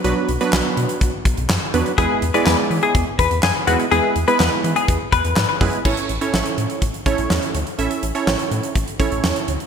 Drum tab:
CC |----------------|----------------|----------------|x---------------|
HH |x-xx--xxx-xx--xx|x-xx--oxx-xx--xx|x-xx--xxx-xx--ox|-xxx-xxxxxxx-xxx|
CP |----x-------x---|----x-------x---|----x-------x---|----------------|
SD |----o-------o---|----o-------o---|----o-------o---|----o-------o---|
BD |--------o-o-----|o-------o-o-----|--------o-o---o-|o-------o-o-----|

CC |----------------|
HH |xxxx-xxxxxxx-xxx|
CP |----------------|
SD |----o-------o---|
BD |--------o-o-----|